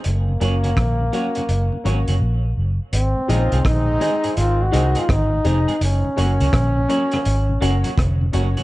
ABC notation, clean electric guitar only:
X:1
M:4/4
L:1/16
Q:"Swing 16ths" 1/4=83
K:Abmix
V:1 name="Clean electric guitar"
z2 [G,B,DG] [G,B,DG] z2 [G,B,DG] [G,B,DG] z2 [G,B,DG] [G,B,DG] z4 | z2 [A,CEA] [A,CEA] z2 [A,CEA] [A,CEA] z2 [A,CEA] [A,CEA] z2 [A,CEA] [A,CEA] | z2 [G,B,DG] [G,B,DG] z2 [G,B,DG] [G,B,DG] z2 [G,B,DG] [G,B,DG] z2 [G,B,DG] [G,B,DG] |]